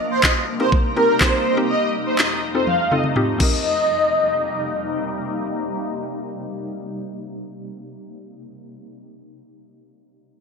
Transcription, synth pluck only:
0.60 0.83 C4 medium
0.60 0.83 D#4 medium
0.60 0.83 G4 medium
0.60 0.84 A#4 medium
0.96 1.12 C4 medium
0.96 1.12 D#4 medium
0.96 1.12 G4 medium
0.96 1.12 A#4 medium
1.21 1.44 C4 medium
1.21 1.44 D#4 medium
1.21 1.44 G4 medium
1.21 1.44 A#4 medium
1.57 1.70 C4 medium
1.57 1.70 D#4 medium
1.57 1.70 G4 medium
1.57 1.70 A#4 medium
2.55 2.78 C4 medium
2.55 2.78 D#4 medium
2.55 2.78 F4 medium
2.55 2.78 A4 medium
2.91 3.07 C4 medium
2.91 3.07 D#4 medium
2.91 3.07 F4 medium
2.91 3.07 A4 medium
3.16 3.37 C4 loud
3.16 3.39 D#4 medium
3.16 3.40 F4 medium
3.16 3.40 G4 loud
3.38 8.31 C4 medium
3.38 8.32 D#4 medium
3.38 8.34 G4 medium
3.38 8.35 A#4 medium

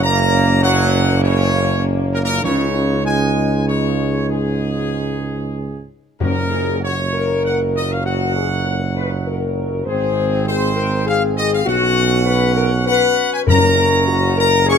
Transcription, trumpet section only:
0.03 0.59 A#5 loud
0.62 1.19 F#5 loud
1.23 1.83 C#5 loud
2.13 2.17 A#4 loud
2.23 2.42 A#4 loud
2.43 3.01 C#5 loud
3.05 3.63 G#5 loud
3.67 4.26 C#5 loud
4.30 5.89 G#4 loud
6.22 6.79 A#4 loud
6.83 7.41 C#5 loud
7.44 7.58 F#5 loud
7.76 7.90 D#5 loud
7.91 8.06 F5 loud
8.05 9.53 F#5 loud
9.87 10.43 G#4 loud
10.47 11.03 C5 loud
11.07 11.21 F5 loud
11.37 11.51 D#5 loud
11.53 11.67 F5 loud
11.68 12.83 F#5 loud
12.87 13.29 F#5 loud
13.33 13.39 G#5 loud
13.48 14.34 A#5 loud
14.38 14.66 A#5 loud
14.68 14.78 C#6 loud

